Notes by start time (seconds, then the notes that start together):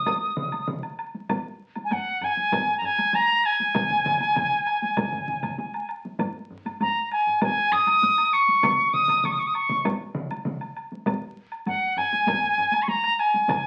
Already playing: D#6
0.06 taiko, taiko high, high woodblock
0.37 taiko mid
0.52 taiko high, high woodblock
0.68 taiko mid, taiko high
0.83 high woodblock
0.99 high woodblock
1.14 taiko high
1.29 taiko, taiko high, high woodblock
1.75 taiko high, high woodblock
1.85 G#5
1.91 F#5, taiko low-mid, taiko high, high woodblock
2.21 G#5, taiko low-mid, high woodblock
2.37 taiko high
2.51 taiko, taiko low-mid, taiko high, high woodblock
2.67 taiko low-mid
2.78 A#5, taiko low-mid
2.85 G#5
2.98 taiko high, high woodblock
3.13 A#5, taiko high
3.29 high woodblock
3.44 G#5, high woodblock
3.60 taiko high
3.74 taiko, taiko low-mid, taiko mid, taiko high, high woodblock
3.90 taiko low-mid, taiko mid
4.04 taiko low-mid, taiko mid, taiko high
4.21 taiko high, high woodblock
4.35 taiko low-mid, taiko mid, taiko high, high woodblock
4.67 high woodblock
4.82 taiko high
4.97 taiko, taiko low-mid, taiko mid, taiko high, high woodblock
5.12 taiko low-mid, taiko mid
5.28 taiko low-mid, taiko mid
5.43 taiko low-mid, taiko mid, taiko high, high woodblock
5.59 taiko high
5.74 high woodblock
5.89 high woodblock
6.05 taiko high
6.19 taiko, taiko low-mid, taiko high, high woodblock
6.50 taiko low-mid
6.65 taiko low-mid, taiko high, high woodblock
6.80 A#5, taiko low-mid, taiko high, high woodblock
7.11 G#5, high woodblock
7.27 taiko low-mid
7.42 G#5, taiko, taiko high, high woodblock
7.72 D#6, taiko low-mid
7.87 taiko high, high woodblock
8.02 taiko low-mid, taiko high
8.18 high woodblock
8.33 C#6, high woodblock
8.48 taiko high
8.63 taiko, taiko mid, taiko high, high woodblock
8.93 D#6, taiko mid
9.08 taiko mid, taiko high, high woodblock
9.24 C#6, taiko mid, taiko high, high woodblock
9.32 D#6
9.39 C#6
9.47 D#6
9.54 C#6, high woodblock
9.69 taiko mid, taiko high
9.85 taiko, taiko high, high woodblock
10.15 taiko mid
10.31 taiko high, high woodblock
10.45 taiko mid, taiko high
10.61 high woodblock
10.77 high woodblock
10.92 taiko high
11.06 taiko, taiko high, high woodblock
11.52 high woodblock
11.67 F#5, taiko low-mid, taiko high, high woodblock
11.97 G#5, taiko low-mid, high woodblock
12.13 taiko high
12.27 taiko, taiko low-mid, taiko high, high woodblock
12.43 taiko low-mid
12.58 taiko low-mid
12.73 taiko high, high woodblock
12.82 C#6
12.88 A#5, taiko high
13.04 high woodblock
13.19 G#5, high woodblock
13.34 taiko high
13.48 taiko, taiko low-mid, taiko mid, taiko high, high woodblock